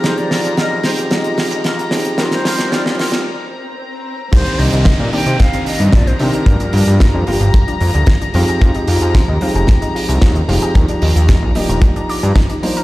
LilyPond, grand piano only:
\new Staff \with { instrumentName = "Grand piano" } { \time 4/4 \key c \minor \tempo 4 = 112 <f aes c' ees' g'>4. <f aes c' ees' g'>8 <f aes c' ees' g'>4. <f aes c' ees' g'>8 | <f g c' ees' g'>4 <f g c' ees' g'>4 r2 | <d ees bes c' g'>4. <ees bes c' d' g'>2 <ees bes c' d' g'>8 | <f g bes d' g'>4. <f g bes d' g'>2 <f aes c' ees' g'>8 |
<f aes c' ees'>4. <f aes c' ees' g'>2 <f aes c' ees' g'>8 | <f bes d' ees' g'>4. <f bes d' ees' g'>2 <f bes d' ees' c''>8 | }